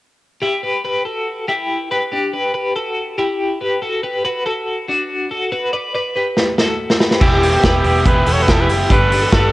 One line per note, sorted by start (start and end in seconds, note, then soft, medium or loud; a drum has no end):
0.42 0.63 E4 medium
0.42 0.63 G4 medium
0.63 0.84 G4 soft
0.63 0.83 B4 medium
0.85 1.06 G4 medium
0.85 1.05 B4 medium
1.05 1.46 F#4 soft
1.05 1.45 A4 medium
1.48 1.88 E4 soft
1.48 1.88 G4 medium
1.91 2.11 G4 soft
1.91 2.12 B4 medium
2.12 2.33 D4 medium
2.12 2.33 G4 medium
2.33 2.54 G4 medium
2.33 2.53 B4 medium
2.54 2.76 G4 medium
2.54 2.75 B4 medium
2.76 3.16 F#4 soft
2.76 3.16 A4 medium
3.18 3.58 E4 medium
3.18 3.58 G4 medium
3.61 3.82 G4 medium
3.61 3.82 B4 medium
3.82 4.04 F#4 medium
3.82 4.03 A4 medium
4.03 4.25 G4 medium
4.03 4.24 B4 medium
4.25 4.45 F#4 medium
4.25 4.46 B4 medium
4.46 4.86 F#4 medium
4.46 4.86 A4 medium
4.88 5.28 D4 medium
4.88 5.28 F#4 medium
5.31 5.52 F#4 medium
5.31 5.52 A4 medium
5.52 5.73 F#4 medium
5.52 5.73 B4 medium
5.73 5.94 B4 soft
5.73 5.93 D5 medium
5.95 6.15 B4 medium
5.95 6.16 D5 medium
6.16 6.56 G4 soft
6.16 6.55 B4 medium
6.37 snare soft
6.58 6.98 F#4 medium
6.58 6.98 A4 medium
6.58 snare medium
6.90 snare medium
7.00 7.21 G4 soft
7.00 7.21 B4 medium
7.00 snare medium
7.11 snare medium
7.21 7.56 E1 medium
7.21 7.42 E3 medium
7.21 7.43 B3 medium
7.21 7.43 E4 medium
7.21 7.52 E4 medium
7.21 7.51 G4 medium
7.21 8.03 G4 medium
7.21 7.41 G4 medium
7.21 kick loud
7.21 crash medium
7.42 7.63 B3 soft
7.42 7.64 E4 soft
7.42 7.63 G4 soft
7.42 open hi-hat medium
7.54 7.64 F#4 soft
7.54 7.64 A4 medium
7.63 7.81 E1 medium
7.63 7.84 E3 medium
7.63 7.85 B3 medium
7.63 7.85 E4 medium
7.63 8.24 G4 medium
7.63 7.83 G4 medium
7.63 8.23 B4 medium
7.63 kick medium
7.63 snare loud
7.63 closed hi-hat medium
7.84 8.02 E1 medium
7.84 8.05 B3 soft
7.84 8.06 E4 soft
7.84 8.06 G4 medium
7.84 open hi-hat medium
8.05 8.23 E1 medium
8.05 8.27 E3 medium
8.05 8.27 B3 medium
8.05 8.26 E4 medium
8.05 8.25 G4 medium
8.05 8.34 B4 medium
8.05 kick loud
8.05 closed hi-hat medium
8.26 8.44 E1 medium
8.26 8.47 B3 soft
8.26 8.48 E4 soft
8.26 8.48 F#4 medium
8.26 8.47 G4 soft
8.26 8.48 A4 medium
8.26 open hi-hat medium
8.33 8.44 C#5 medium
8.42 8.53 B4 medium
8.47 8.69 E1 loud
8.47 8.69 E3 soft
8.47 8.69 B3 medium
8.47 8.69 E4 medium
8.47 8.88 E4 medium
8.47 8.88 G4 medium
8.47 8.67 G4 medium
8.47 kick medium
8.47 snare medium
8.47 closed hi-hat medium
8.52 8.62 A4 medium
8.61 8.69 B4 medium
8.68 8.86 F#1 medium
8.68 8.90 B3 soft
8.68 8.90 E4 soft
8.68 8.90 G4 medium
8.68 open hi-hat medium
8.89 9.25 G1 medium
8.89 9.11 G3 medium
8.89 9.11 A3 medium
8.89 9.11 D4 medium
8.89 9.20 D4 medium
8.89 9.20 G4 medium
8.89 9.11 A4 medium
8.89 9.10 B4 medium
8.89 9.35 B4 medium
8.89 kick loud
8.89 closed hi-hat medium
9.11 9.32 D4 soft
9.11 9.33 A4 soft
9.11 9.32 B4 soft
9.11 open hi-hat medium
9.22 9.33 F#4 medium
9.22 9.32 A4 medium
9.32 9.50 G1 medium
9.32 9.52 A3 medium
9.32 9.52 D4 medium
9.32 9.52 G4 medium
9.32 9.52 A4 medium
9.32 9.52 B4 medium
9.32 kick loud
9.32 snare loud
9.32 closed hi-hat medium